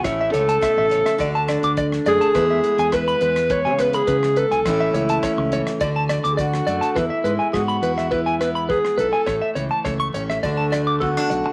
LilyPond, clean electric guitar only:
\new Staff \with { instrumentName = "Clean electric guitar" } { \time 4/4 \key e \mixolydian \tempo 4 = 104 cis''16 e''16 cis''16 a''16 e''16 e''16 cis''16 e''16 d''16 a''16 d''16 d'''16 d''16 r16 d''16 a''16 | b'16 e''16 r16 gis''16 b'16 b''16 b'16 r16 b'16 gis''16 b'16 b''16 b'16 r16 b'16 gis''16 | r16 e''16 cis''16 a''16 cis''16 r16 cis''16 r16 d''16 a''16 d''16 d'''16 d''16 r16 d''16 a''16 | b'16 e''16 b'16 gis''16 gis'16 b''16 b'16 e''16 b'16 gis''16 b'16 b''16 b'16 r16 b'16 gis''16 |
cis''16 e''16 cis''16 a''16 cis''16 cis'''16 cis''16 e''16 d''16 a''16 d''16 d'''16 a'16 r8. | }